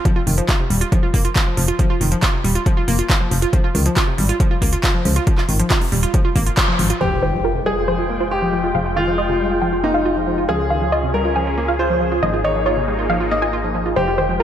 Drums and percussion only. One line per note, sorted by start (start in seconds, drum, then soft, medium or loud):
0.05 kick loud
0.05 closed hi-hat medium
0.27 open hi-hat loud
0.38 closed hi-hat medium
0.49 kick loud
0.49 clap loud
0.49 closed hi-hat medium
0.70 open hi-hat loud
0.81 closed hi-hat medium
0.92 kick loud
0.92 closed hi-hat medium
1.14 kick medium
1.14 open hi-hat loud
1.25 closed hi-hat medium
1.36 kick loud
1.36 clap loud
1.36 closed hi-hat medium
1.57 open hi-hat loud
1.68 closed hi-hat medium
1.79 kick loud
1.79 closed hi-hat medium
2.01 open hi-hat loud
2.12 closed hi-hat medium
2.23 kick loud
2.23 clap loud
2.23 closed hi-hat medium
2.44 open hi-hat medium
2.55 closed hi-hat medium
2.66 kick loud
2.66 closed hi-hat medium
2.88 open hi-hat loud
2.99 closed hi-hat medium
3.10 kick loud
3.10 clap loud
3.10 closed hi-hat medium
3.31 open hi-hat loud
3.42 closed hi-hat medium
3.53 kick loud
3.53 closed hi-hat medium
3.75 open hi-hat loud
3.86 closed hi-hat medium
3.97 kick loud
3.97 clap loud
3.97 closed hi-hat medium
4.18 open hi-hat loud
4.29 closed hi-hat medium
4.40 kick loud
4.40 closed hi-hat medium
4.62 kick medium
4.62 open hi-hat loud
4.73 closed hi-hat medium
4.84 kick loud
4.84 clap loud
4.84 closed hi-hat medium
5.05 open hi-hat loud
5.16 closed hi-hat medium
5.27 kick loud
5.27 closed hi-hat medium
5.38 clap soft
5.49 open hi-hat loud
5.60 closed hi-hat medium
5.70 kick loud
5.70 clap loud
5.70 closed hi-hat medium
5.81 open hi-hat medium
5.92 open hi-hat loud
6.03 closed hi-hat medium
6.14 kick loud
6.14 closed hi-hat medium
6.36 kick medium
6.36 open hi-hat loud
6.46 closed hi-hat medium
6.57 kick loud
6.57 clap loud
6.57 closed hi-hat medium
6.79 open hi-hat loud
6.90 closed hi-hat medium